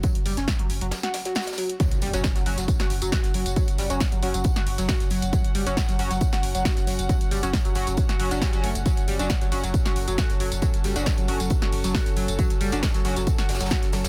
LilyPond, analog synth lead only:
\new Staff \with { instrumentName = "Analog synth lead" } { \clef bass \time 4/4 \key fis \minor \tempo 4 = 136 fis16 r16 g16 cis'16 r16 fis16 r16 fis16 r16 fis'16 r16 fis16 fis'16 r16 fis16 r16 | fis16 r16 g16 cis'16 r16 fis16 r16 fis16 r16 fis'16 r16 fis16 fis'16 r16 fis16 r16 | fis16 r16 g16 cis'16 r16 fis16 r16 fis16 r16 fis'16 r16 fis16 fis'16 r16 fis16 r16 | fis16 r16 g16 cis'16 r16 fis16 r16 fis16 r16 fis'16 r16 fis16 fis'16 r16 fis16 r16 |
fis16 r16 g16 cis'16 r16 fis16 r16 fis16 r16 fis'16 r16 d'16 g16 r16 a16 r16 | fis16 r16 g16 d'16 r16 fis16 r16 fis16 r16 fis'16 r16 fis16 fis'16 r16 fis16 r16 | fis16 r16 g16 d'16 r16 fis16 r16 fis16 r16 fis'16 r16 fis16 fis'16 r16 fis16 r16 | fis16 r16 g16 d'16 r16 fis16 r16 fis16 r16 fis'16 r16 fis16 fis'16 r16 fis16 r16 | }